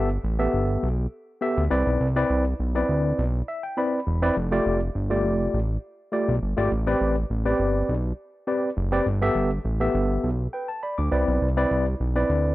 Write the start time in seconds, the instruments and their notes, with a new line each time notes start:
Already playing: analog synth bass G1
0.24 analog synth bass A1
0.39 tine electric piano B3 G4 A4 E5
0.53 analog synth bass G1
0.83 analog synth bass B1
1.41 tine electric piano B3 G4 A4 E5
1.57 analog synth bass D2
1.70 analog synth bass C2, tine electric piano C4 E4 B4 D5
1.86 analog synth bass B1
2.00 analog synth bass C2
2.16 tine electric piano C4 E4 B4 D5
2.30 analog synth bass C2
2.60 analog synth bass B1
2.75 tine electric piano C4 E4 B4 D5
2.89 analog synth bass D2
3.18 analog synth bass B1
3.48 tine electric piano E5
3.63 tine electric piano G5
3.77 tine electric piano C4 E4 B4 D5 B5
4.07 analog synth bass E1
4.22 tine electric piano C4 E4 B4 D5
4.36 analog synth bass F1
4.52 tine electric piano A3 F4 G4 D5
4.66 analog synth bass F1
4.95 analog synth bass G1
5.10 tine electric piano A3 F4 G4 D5
5.25 analog synth bass F1
5.54 analog synth bass A1
6.12 tine electric piano A3 F4 G4 D5
6.28 analog synth bass B1
6.42 analog synth bass G1
6.57 analog synth bass G#1, tine electric piano A3 F4 G4 D5
6.71 analog synth bass A1
6.87 tine electric piano C4 G4 B4 D5
7.01 analog synth bass A1
7.30 analog synth bass A1
7.45 tine electric piano C4 G4 B4 D5
7.59 analog synth bass G1
7.89 analog synth bass B1
8.47 tine electric piano C4 G4 B4 D5
8.77 analog synth bass F#1
8.92 tine electric piano C4 G4 B4 D5
9.06 analog synth bass G1
9.21 tine electric piano B3 G4 A4 E5
9.35 analog synth bass G1
9.65 analog synth bass A1
9.80 tine electric piano B3 G4 A4 E5
9.94 analog synth bass G1
10.24 analog synth bass B1
10.53 tine electric piano B4 G5
10.68 tine electric piano A5
10.83 tine electric piano D5 B5
10.98 analog synth bass D2, tine electric piano D6
11.11 analog synth bass C2, tine electric piano C4 E4 B4 D5
11.28 analog synth bass B1
11.42 analog synth bass C2
11.57 tine electric piano C4 E4 B4 D5
11.71 analog synth bass C2
12.00 analog synth bass B1
12.15 tine electric piano C4 E4 B4 D5
12.29 analog synth bass D2